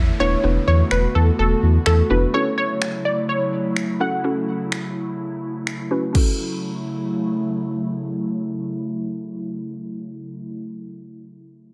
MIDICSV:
0, 0, Header, 1, 7, 480
1, 0, Start_track
1, 0, Key_signature, 3, "minor"
1, 0, Tempo, 476190
1, 438, Time_signature, 4, 2, 24, 8
1, 11829, End_track
2, 0, Start_track
2, 0, Title_t, "Synth pluck"
2, 0, Program_c, 0, 84
2, 0, Note_on_c, 0, 76, 98
2, 202, Note_on_c, 0, 73, 89
2, 215, Note_off_c, 0, 76, 0
2, 670, Note_off_c, 0, 73, 0
2, 682, Note_on_c, 0, 73, 90
2, 922, Note_on_c, 0, 71, 92
2, 927, Note_off_c, 0, 73, 0
2, 1161, Note_on_c, 0, 69, 83
2, 1167, Note_off_c, 0, 71, 0
2, 1383, Note_off_c, 0, 69, 0
2, 1402, Note_on_c, 0, 69, 92
2, 1847, Note_off_c, 0, 69, 0
2, 1880, Note_on_c, 0, 69, 92
2, 2122, Note_on_c, 0, 71, 84
2, 2127, Note_off_c, 0, 69, 0
2, 2360, Note_on_c, 0, 73, 105
2, 2367, Note_off_c, 0, 71, 0
2, 2582, Note_off_c, 0, 73, 0
2, 2598, Note_on_c, 0, 73, 98
2, 3076, Note_on_c, 0, 74, 95
2, 3093, Note_off_c, 0, 73, 0
2, 3301, Note_off_c, 0, 74, 0
2, 3317, Note_on_c, 0, 73, 98
2, 4040, Note_on_c, 0, 78, 98
2, 4059, Note_off_c, 0, 73, 0
2, 5679, Note_off_c, 0, 78, 0
2, 11829, End_track
3, 0, Start_track
3, 0, Title_t, "Synth pluck"
3, 0, Program_c, 1, 84
3, 198, Note_on_c, 1, 59, 74
3, 199, Note_on_c, 1, 62, 65
3, 201, Note_on_c, 1, 64, 68
3, 203, Note_on_c, 1, 71, 79
3, 318, Note_off_c, 1, 59, 0
3, 319, Note_off_c, 1, 62, 0
3, 319, Note_off_c, 1, 64, 0
3, 321, Note_off_c, 1, 71, 0
3, 438, Note_on_c, 1, 59, 79
3, 439, Note_on_c, 1, 62, 71
3, 442, Note_on_c, 1, 64, 70
3, 443, Note_on_c, 1, 71, 88
3, 917, Note_off_c, 1, 59, 0
3, 917, Note_off_c, 1, 62, 0
3, 919, Note_off_c, 1, 64, 0
3, 920, Note_off_c, 1, 71, 0
3, 2115, Note_on_c, 1, 59, 73
3, 2117, Note_on_c, 1, 62, 67
3, 2119, Note_on_c, 1, 64, 67
3, 2121, Note_on_c, 1, 66, 83
3, 2236, Note_off_c, 1, 59, 0
3, 2237, Note_off_c, 1, 62, 0
3, 2238, Note_off_c, 1, 64, 0
3, 2239, Note_off_c, 1, 66, 0
3, 2356, Note_on_c, 1, 61, 77
3, 2359, Note_on_c, 1, 64, 71
3, 2361, Note_on_c, 1, 66, 69
3, 2362, Note_on_c, 1, 69, 85
3, 2836, Note_off_c, 1, 61, 0
3, 2837, Note_off_c, 1, 64, 0
3, 2838, Note_off_c, 1, 66, 0
3, 2839, Note_off_c, 1, 69, 0
3, 4033, Note_on_c, 1, 61, 70
3, 4036, Note_on_c, 1, 64, 66
3, 4037, Note_on_c, 1, 66, 64
3, 4038, Note_on_c, 1, 69, 83
3, 4155, Note_off_c, 1, 61, 0
3, 4157, Note_off_c, 1, 64, 0
3, 4158, Note_off_c, 1, 66, 0
3, 4158, Note_off_c, 1, 69, 0
3, 4274, Note_on_c, 1, 61, 75
3, 4276, Note_on_c, 1, 64, 70
3, 4277, Note_on_c, 1, 66, 70
3, 4280, Note_on_c, 1, 69, 86
3, 4755, Note_off_c, 1, 61, 0
3, 4756, Note_off_c, 1, 64, 0
3, 4756, Note_off_c, 1, 66, 0
3, 4758, Note_off_c, 1, 69, 0
3, 5954, Note_on_c, 1, 61, 89
3, 5957, Note_on_c, 1, 64, 77
3, 5958, Note_on_c, 1, 66, 82
3, 5959, Note_on_c, 1, 71, 91
3, 6076, Note_off_c, 1, 61, 0
3, 6077, Note_off_c, 1, 64, 0
3, 6078, Note_off_c, 1, 66, 0
3, 6078, Note_off_c, 1, 71, 0
3, 6177, Note_on_c, 1, 61, 83
3, 6190, Note_on_c, 1, 64, 77
3, 6204, Note_on_c, 1, 66, 75
3, 6218, Note_on_c, 1, 69, 90
3, 10678, Note_off_c, 1, 61, 0
3, 10691, Note_off_c, 1, 64, 0
3, 10704, Note_off_c, 1, 66, 0
3, 10718, Note_off_c, 1, 69, 0
3, 11829, End_track
4, 0, Start_track
4, 0, Title_t, "Analog synth pad"
4, 0, Program_c, 2, 89
4, 0, Note_on_c, 2, 50, 75
4, 0, Note_on_c, 2, 57, 71
4, 0, Note_on_c, 2, 59, 68
4, 0, Note_on_c, 2, 64, 83
4, 419, Note_off_c, 2, 64, 0
4, 436, Note_on_c, 2, 66, 82
4, 2319, Note_off_c, 2, 50, 0
4, 2319, Note_off_c, 2, 59, 0
4, 2338, Note_off_c, 2, 66, 0
4, 2357, Note_on_c, 2, 49, 78
4, 2357, Note_on_c, 2, 54, 69
4, 2357, Note_on_c, 2, 64, 84
4, 6157, Note_off_c, 2, 57, 0
4, 6159, Note_off_c, 2, 49, 0
4, 6159, Note_off_c, 2, 64, 0
4, 6160, Note_off_c, 2, 54, 0
4, 6195, Note_on_c, 2, 49, 73
4, 6195, Note_on_c, 2, 54, 68
4, 6196, Note_on_c, 2, 57, 69
4, 6197, Note_on_c, 2, 64, 82
4, 10696, Note_off_c, 2, 49, 0
4, 10696, Note_off_c, 2, 54, 0
4, 10697, Note_off_c, 2, 57, 0
4, 10698, Note_off_c, 2, 64, 0
4, 11829, End_track
5, 0, Start_track
5, 0, Title_t, "Sub bass"
5, 0, Program_c, 3, 38
5, 0, Note_on_c, 3, 40, 96
5, 115, Note_off_c, 3, 40, 0
5, 200, Note_on_c, 3, 27, 84
5, 356, Note_off_c, 3, 27, 0
5, 440, Note_on_c, 3, 28, 105
5, 595, Note_off_c, 3, 28, 0
5, 680, Note_on_c, 3, 40, 101
5, 835, Note_off_c, 3, 40, 0
5, 920, Note_on_c, 3, 28, 97
5, 1075, Note_off_c, 3, 28, 0
5, 1160, Note_on_c, 3, 40, 101
5, 1316, Note_off_c, 3, 40, 0
5, 1401, Note_on_c, 3, 28, 102
5, 1556, Note_off_c, 3, 28, 0
5, 1640, Note_on_c, 3, 40, 106
5, 1796, Note_off_c, 3, 40, 0
5, 1880, Note_on_c, 3, 40, 91
5, 2035, Note_off_c, 3, 40, 0
5, 2120, Note_on_c, 3, 29, 85
5, 2275, Note_off_c, 3, 29, 0
5, 11829, End_track
6, 0, Start_track
6, 0, Title_t, "Downlifter"
6, 0, Program_c, 4, 103
6, 0, Note_on_c, 4, 60, 81
6, 2360, Note_off_c, 4, 60, 0
6, 11829, End_track
7, 0, Start_track
7, 0, Title_t, "Drums"
7, 919, Note_on_c, 9, 26, 116
7, 1020, Note_off_c, 9, 26, 0
7, 1875, Note_on_c, 9, 26, 110
7, 1976, Note_off_c, 9, 26, 0
7, 2839, Note_on_c, 9, 26, 105
7, 2940, Note_off_c, 9, 26, 0
7, 3795, Note_on_c, 9, 26, 113
7, 3896, Note_off_c, 9, 26, 0
7, 4758, Note_on_c, 9, 26, 109
7, 4859, Note_off_c, 9, 26, 0
7, 5716, Note_on_c, 9, 26, 108
7, 5816, Note_off_c, 9, 26, 0
7, 6198, Note_on_c, 9, 49, 79
7, 6199, Note_on_c, 9, 36, 92
7, 6299, Note_off_c, 9, 36, 0
7, 6299, Note_off_c, 9, 49, 0
7, 11829, End_track
0, 0, End_of_file